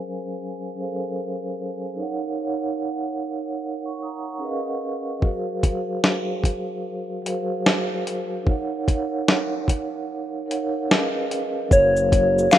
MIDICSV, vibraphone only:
0, 0, Header, 1, 2, 480
1, 0, Start_track
1, 0, Tempo, 810811
1, 1171, Time_signature, 4, 2, 24, 8
1, 7450, End_track
2, 0, Start_track
2, 0, Title_t, "Vibraphone"
2, 0, Program_c, 0, 11
2, 0, Control_c, 0, 64, 127
2, 0, Note_on_c, 0, 54, 66
2, 0, Note_on_c, 0, 61, 64
2, 0, Note_on_c, 0, 68, 61
2, 0, Note_on_c, 0, 70, 60
2, 0, Note_on_c, 0, 72, 61
2, 0, Note_on_c, 0, 77, 78
2, 0, Note_on_c, 0, 80, 76
2, 182, Note_off_c, 0, 54, 0
2, 186, Note_off_c, 0, 61, 0
2, 189, Note_off_c, 0, 68, 0
2, 194, Note_off_c, 0, 70, 0
2, 197, Note_off_c, 0, 72, 0
2, 202, Note_off_c, 0, 80, 0
2, 442, Note_on_c, 0, 54, 65
2, 450, Note_on_c, 0, 61, 66
2, 456, Note_on_c, 0, 68, 62
2, 463, Note_on_c, 0, 69, 53
2, 474, Note_on_c, 0, 72, 68
2, 481, Note_off_c, 0, 77, 0
2, 481, Note_on_c, 0, 77, 74
2, 503, Note_on_c, 0, 70, 70
2, 506, Note_off_c, 0, 69, 0
2, 971, Note_off_c, 0, 54, 0
2, 974, Note_off_c, 0, 61, 0
2, 978, Note_off_c, 0, 68, 0
2, 986, Note_off_c, 0, 72, 0
2, 990, Note_off_c, 0, 77, 0
2, 1001, Note_off_c, 0, 70, 0
2, 1157, Note_on_c, 0, 63, 75
2, 1167, Note_on_c, 0, 70, 64
2, 1176, Note_on_c, 0, 73, 67
2, 1180, Control_c, 0, 64, 0
2, 1186, Note_on_c, 0, 77, 60
2, 1195, Note_on_c, 0, 78, 74
2, 1277, Control_c, 0, 64, 127
2, 1354, Note_off_c, 0, 63, 0
2, 1359, Note_off_c, 0, 70, 0
2, 1363, Note_off_c, 0, 73, 0
2, 1368, Note_off_c, 0, 77, 0
2, 1373, Note_off_c, 0, 78, 0
2, 1404, Note_on_c, 0, 63, 71
2, 1414, Note_on_c, 0, 70, 64
2, 1424, Note_on_c, 0, 73, 67
2, 1432, Note_on_c, 0, 77, 64
2, 1444, Note_on_c, 0, 78, 86
2, 2103, Note_off_c, 0, 63, 0
2, 2108, Note_off_c, 0, 70, 0
2, 2113, Note_off_c, 0, 73, 0
2, 2117, Note_off_c, 0, 77, 0
2, 2123, Note_off_c, 0, 78, 0
2, 2282, Note_on_c, 0, 85, 61
2, 2287, Note_on_c, 0, 78, 48
2, 2367, Note_off_c, 0, 85, 0
2, 2369, Note_off_c, 0, 78, 0
2, 2381, Note_on_c, 0, 87, 63
2, 2387, Note_on_c, 0, 82, 50
2, 2520, Note_off_c, 0, 87, 0
2, 2523, Note_off_c, 0, 82, 0
2, 2537, Note_on_c, 0, 85, 54
2, 2539, Note_on_c, 0, 78, 51
2, 2598, Note_on_c, 0, 61, 79
2, 2608, Note_on_c, 0, 68, 76
2, 2616, Note_on_c, 0, 70, 75
2, 2618, Control_c, 0, 64, 0
2, 2621, Note_on_c, 0, 71, 77
2, 2631, Note_on_c, 0, 75, 73
2, 2640, Note_on_c, 0, 77, 94
2, 2707, Control_c, 0, 64, 127
2, 2758, Note_off_c, 0, 85, 0
2, 2759, Note_off_c, 0, 78, 0
2, 3014, Note_off_c, 0, 61, 0
2, 3019, Note_off_c, 0, 68, 0
2, 3023, Note_off_c, 0, 70, 0
2, 3026, Note_off_c, 0, 71, 0
2, 3031, Note_off_c, 0, 75, 0
2, 3035, Note_off_c, 0, 77, 0
2, 3075, Note_on_c, 0, 54, 66
2, 3085, Note_on_c, 0, 66, 66
2, 3090, Note_on_c, 0, 68, 69
2, 3098, Note_on_c, 0, 70, 74
2, 3100, Control_c, 0, 64, 0
2, 3105, Note_on_c, 0, 72, 63
2, 3113, Note_on_c, 0, 77, 80
2, 3189, Control_c, 0, 64, 127
2, 3273, Note_off_c, 0, 54, 0
2, 3277, Note_off_c, 0, 66, 0
2, 3280, Note_off_c, 0, 68, 0
2, 3284, Note_off_c, 0, 70, 0
2, 3288, Note_off_c, 0, 72, 0
2, 3292, Note_off_c, 0, 77, 0
2, 3315, Note_on_c, 0, 54, 70
2, 3321, Note_on_c, 0, 66, 65
2, 3330, Note_on_c, 0, 68, 66
2, 3338, Note_on_c, 0, 70, 61
2, 3344, Note_on_c, 0, 72, 61
2, 3354, Note_on_c, 0, 77, 77
2, 4018, Note_off_c, 0, 54, 0
2, 4021, Note_off_c, 0, 66, 0
2, 4026, Note_off_c, 0, 68, 0
2, 4030, Note_off_c, 0, 70, 0
2, 4033, Note_off_c, 0, 72, 0
2, 4038, Note_off_c, 0, 77, 0
2, 4275, Note_on_c, 0, 54, 72
2, 4284, Note_on_c, 0, 66, 69
2, 4292, Note_on_c, 0, 68, 66
2, 4301, Note_on_c, 0, 70, 67
2, 4308, Note_on_c, 0, 72, 69
2, 4315, Note_on_c, 0, 77, 81
2, 4807, Note_off_c, 0, 54, 0
2, 4812, Note_off_c, 0, 66, 0
2, 4815, Note_off_c, 0, 68, 0
2, 4820, Note_off_c, 0, 70, 0
2, 4824, Note_off_c, 0, 72, 0
2, 4827, Note_off_c, 0, 77, 0
2, 4994, Note_on_c, 0, 63, 76
2, 5002, Note_on_c, 0, 70, 62
2, 5011, Note_on_c, 0, 73, 69
2, 5018, Control_c, 0, 64, 0
2, 5022, Note_on_c, 0, 77, 64
2, 5030, Note_on_c, 0, 78, 79
2, 5119, Control_c, 0, 64, 127
2, 5192, Note_off_c, 0, 63, 0
2, 5196, Note_off_c, 0, 70, 0
2, 5201, Note_off_c, 0, 73, 0
2, 5206, Note_off_c, 0, 77, 0
2, 5210, Note_off_c, 0, 78, 0
2, 5234, Note_on_c, 0, 63, 74
2, 5245, Note_on_c, 0, 70, 66
2, 5255, Note_on_c, 0, 73, 64
2, 5266, Note_on_c, 0, 77, 65
2, 5274, Note_on_c, 0, 78, 82
2, 5938, Note_off_c, 0, 63, 0
2, 5943, Note_off_c, 0, 70, 0
2, 5948, Note_off_c, 0, 73, 0
2, 5954, Note_off_c, 0, 77, 0
2, 5958, Note_off_c, 0, 78, 0
2, 6193, Note_on_c, 0, 63, 72
2, 6202, Note_on_c, 0, 70, 78
2, 6212, Note_on_c, 0, 73, 69
2, 6221, Note_on_c, 0, 77, 63
2, 6231, Note_on_c, 0, 78, 78
2, 6440, Note_on_c, 0, 61, 84
2, 6442, Note_off_c, 0, 63, 0
2, 6446, Note_off_c, 0, 70, 0
2, 6447, Note_on_c, 0, 68, 75
2, 6452, Note_off_c, 0, 73, 0
2, 6453, Note_on_c, 0, 70, 76
2, 6456, Note_off_c, 0, 77, 0
2, 6460, Control_c, 0, 64, 0
2, 6460, Note_on_c, 0, 71, 77
2, 6461, Note_off_c, 0, 78, 0
2, 6468, Note_on_c, 0, 75, 72
2, 6479, Note_on_c, 0, 77, 84
2, 6549, Control_c, 0, 64, 127
2, 6855, Note_off_c, 0, 61, 0
2, 6858, Note_off_c, 0, 68, 0
2, 6862, Note_off_c, 0, 70, 0
2, 6865, Note_off_c, 0, 71, 0
2, 6869, Note_off_c, 0, 75, 0
2, 6874, Note_off_c, 0, 77, 0
2, 6916, Note_on_c, 0, 54, 70
2, 6924, Note_on_c, 0, 66, 65
2, 6932, Note_on_c, 0, 68, 61
2, 6940, Control_c, 0, 64, 0
2, 6941, Note_on_c, 0, 70, 65
2, 6948, Note_on_c, 0, 72, 67
2, 6954, Note_on_c, 0, 77, 79
2, 7033, Control_c, 0, 64, 127
2, 7113, Note_off_c, 0, 54, 0
2, 7117, Note_off_c, 0, 66, 0
2, 7121, Note_off_c, 0, 68, 0
2, 7126, Note_off_c, 0, 70, 0
2, 7129, Note_off_c, 0, 72, 0
2, 7132, Note_off_c, 0, 77, 0
2, 7155, Note_on_c, 0, 54, 73
2, 7165, Note_on_c, 0, 66, 70
2, 7171, Note_on_c, 0, 68, 66
2, 7180, Note_on_c, 0, 70, 68
2, 7186, Note_on_c, 0, 73, 68
2, 7192, Note_on_c, 0, 77, 72
2, 7450, Note_off_c, 0, 54, 0
2, 7450, Note_off_c, 0, 66, 0
2, 7450, Note_off_c, 0, 68, 0
2, 7450, Note_off_c, 0, 70, 0
2, 7450, Note_off_c, 0, 73, 0
2, 7450, Note_off_c, 0, 77, 0
2, 7450, End_track
0, 0, End_of_file